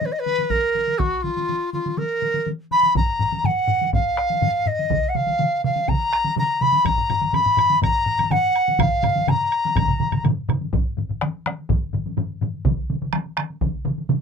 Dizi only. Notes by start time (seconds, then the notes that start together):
0.05 B4
0.12 D#5
0.19 B4
0.50 A#4
0.98 F#4
1.22 F4
1.73 F4
1.98 A#4
2.71 B5
2.97 A#5
3.45 F#5
3.94 F5
4.67 D#5
5.09 F#5
5.16 F5
5.65 F5
5.88 A#5
6.38 A#5
6.62 B5
6.85 A#5
7.34 B5
7.82 A#5
8.31 F#5
8.80 F5
9.29 A#5